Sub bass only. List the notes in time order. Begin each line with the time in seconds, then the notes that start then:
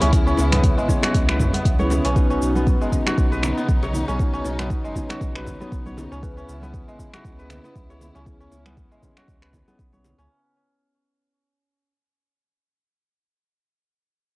0.01 C#2
0.38 C#2
0.78 G#1
1.14 C#2
1.65 C#2
2.05 B1
2.42 B1
2.81 F#1
3.18 B1
3.69 B1
4.08 B1
4.45 B1
4.85 F#1
5.21 B1
5.72 B1
6.12 C#2
6.48 C#2
6.88 G#1
7.25 C#2
7.75 C#2
8.15 C#2
8.52 C#2
8.91 G#1
9.28 C#2
9.79 B1
10.18 C#2